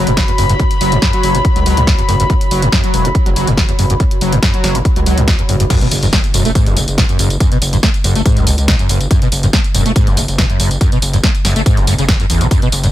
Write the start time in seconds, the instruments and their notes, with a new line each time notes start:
Already playing: analog synth pad F#4 C#5 B5
0.07 analog synth bass F#1, acid bass F#2, closed hi-hat
0.17 kick, snare, closed hi-hat
0.28 acid bass E2, closed hi-hat
0.38 analog synth bass F#1, acid bass F#2, open hi-hat
0.49 acid bass F#2, closed hi-hat
0.60 acid bass F#2, kick, closed hi-hat
0.71 closed hi-hat
0.81 analog synth bass F#1, acid bass F#3, open hi-hat
0.92 acid bass F#2, closed hi-hat
1.02 acid bass F#2, kick, snare, closed hi-hat
1.13 acid bass F#3, closed hi-hat
1.23 analog synth bass F#1, open hi-hat
1.35 acid bass F#2, closed hi-hat
1.45 kick, closed hi-hat
1.56 analog synth bass C#2, acid bass F#3, closed hi-hat
1.66 analog synth bass C#2, acid bass F#3, open hi-hat
1.77 analog synth bass C#2, acid bass F#2, closed hi-hat
1.87 acid bass F#2, kick, snare, closed hi-hat
1.98 acid bass E2, closed hi-hat
2.08 analog synth bass F#1, acid bass F#2, open hi-hat
2.20 acid bass F#2, closed hi-hat
2.30 acid bass F#2, kick, closed hi-hat
2.41 closed hi-hat
2.51 analog synth bass F#1, acid bass F#3, open hi-hat
2.62 acid bass F#2, closed hi-hat
2.72 acid bass F#2, kick, snare, closed hi-hat
2.84 acid bass F#3, closed hi-hat
2.94 analog synth bass E1, open hi-hat
3.05 acid bass F#2, closed hi-hat
3.15 kick, closed hi-hat
3.26 analog synth bass F#1, acid bass F#3, closed hi-hat
3.36 analog synth bass F#1, acid bass F#3, open hi-hat
3.47 analog synth bass F#1, acid bass F#2, closed hi-hat
3.57 acid bass F#2, kick, snare, closed hi-hat
3.69 acid bass E2, closed hi-hat
3.79 analog synth bass F#1, acid bass F#2, open hi-hat
3.90 acid bass F#2, closed hi-hat
4.00 acid bass F#2, kick, closed hi-hat
4.11 closed hi-hat
4.21 analog synth bass F#1, acid bass F#3, open hi-hat
4.32 acid bass F#2, closed hi-hat
4.43 acid bass F#2, kick, snare, closed hi-hat
4.54 acid bass F#3, closed hi-hat
4.64 analog synth bass F#1, snare, open hi-hat
4.75 acid bass F#2, closed hi-hat
4.85 kick, closed hi-hat
4.96 analog synth bass C#2, acid bass F#3, closed hi-hat
5.06 analog synth bass C#2, acid bass F#3, open hi-hat
5.18 analog synth bass C#2, acid bass F#2, closed hi-hat
5.28 acid bass F#2, kick, snare, closed hi-hat
5.39 acid bass E2, closed hi-hat
5.49 analog synth bass F#1, acid bass F#2, open hi-hat
5.60 acid bass F#2, closed hi-hat
5.70 acid bass F#2, kick, closed hi-hat, crash, tambourine, impact
5.81 acid bass B2, closed hi-hat, tambourine
5.91 analog synth bass F#1, open hi-hat, tambourine
6.03 acid bass F#2, closed hi-hat, tambourine
6.13 acid bass A3, kick, snare, closed hi-hat, tambourine
6.24 closed hi-hat, tambourine
6.34 analog synth bass E1, acid bass F#2, open hi-hat, tambourine
6.45 acid bass A3, closed hi-hat, tambourine
6.55 acid bass G#2, kick, closed hi-hat, tambourine
6.66 analog synth bass F#1, acid bass F#2, closed hi-hat, tambourine
6.77 analog synth bass F#1, acid bass F#1, open hi-hat, tambourine
6.88 analog synth bass F#1, closed hi-hat, tambourine
6.98 acid bass B2, kick, snare, closed hi-hat, tambourine
7.09 acid bass F#2, closed hi-hat, tambourine
7.19 analog synth bass F#1, acid bass F#2, open hi-hat, tambourine
7.30 closed hi-hat, tambourine
7.40 acid bass F#2, kick, closed hi-hat, tambourine
7.52 acid bass B2, closed hi-hat, tambourine
7.62 analog synth bass F#1, open hi-hat, tambourine
7.73 acid bass F#2, closed hi-hat, tambourine
7.83 acid bass A3, kick, snare, closed hi-hat, tambourine
7.94 closed hi-hat, tambourine
8.04 analog synth bass F#1, acid bass F#2, open hi-hat, tambourine
8.15 acid bass A3, closed hi-hat, tambourine
8.26 acid bass G#2, kick, closed hi-hat, tambourine
8.37 analog synth bass C#2, acid bass F#2, closed hi-hat, tambourine
8.47 acid bass F#1, analog synth bass C#2, open hi-hat, tambourine
8.58 analog synth bass C#2, closed hi-hat, tambourine
8.68 acid bass B2, kick, snare, closed hi-hat, tambourine
8.79 acid bass F#2, closed hi-hat, tambourine
8.89 analog synth bass F#1, acid bass F#2, open hi-hat, tambourine
9.01 closed hi-hat, tambourine
9.11 acid bass F#2, kick, closed hi-hat, tambourine
9.22 acid bass B2, closed hi-hat, tambourine
9.32 analog synth bass F#1, open hi-hat, tambourine
9.43 acid bass F#2, closed hi-hat, tambourine
9.53 acid bass A3, kick, snare, closed hi-hat, tambourine
9.64 closed hi-hat, tambourine
9.74 analog synth bass E1, acid bass F#2, open hi-hat, tambourine
9.86 acid bass A3, closed hi-hat, tambourine
9.96 acid bass G#2, kick, closed hi-hat, tambourine
10.07 analog synth bass F#1, acid bass F#2, closed hi-hat, tambourine
10.17 acid bass F#1, analog synth bass F#1, open hi-hat, tambourine
10.28 analog synth bass F#1, closed hi-hat, tambourine
10.38 acid bass B2, kick, snare, closed hi-hat, tambourine
10.49 acid bass F#2, closed hi-hat, tambourine
10.59 analog synth bass F#1, acid bass F#2, open hi-hat, tambourine
10.71 closed hi-hat, tambourine
10.81 acid bass F#2, kick, closed hi-hat, tambourine
10.92 acid bass B2, closed hi-hat, tambourine
11.02 analog synth bass F#1, open hi-hat, tambourine
11.13 acid bass F#2, closed hi-hat, tambourine
11.23 acid bass A3, kick, snare, closed hi-hat, tambourine
11.35 closed hi-hat, tambourine
11.45 analog synth bass F#1, acid bass F#2, snare, open hi-hat, tambourine
11.56 acid bass A3, closed hi-hat, tambourine
11.66 acid bass G#2, kick, closed hi-hat, tambourine
11.77 analog synth bass F#1, acid bass F#2, closed hi-hat, tambourine
11.87 analog synth bass F#1, acid bass F#2, open hi-hat, tambourine
11.98 analog synth bass F#1, acid bass C#3, closed hi-hat, tambourine
12.08 acid bass F#2, kick, snare, closed hi-hat, tambourine
12.20 acid bass F#2, closed hi-hat, tambourine
12.30 analog synth bass A1, acid bass E2, open hi-hat, tambourine
12.41 acid bass C#3, closed hi-hat, tambourine
12.51 acid bass F#2, kick, closed hi-hat, tambourine
12.62 acid bass B2, closed hi-hat, tambourine
12.72 analog synth bass F#1, open hi-hat, tambourine
12.84 acid bass F#2, closed hi-hat, tambourine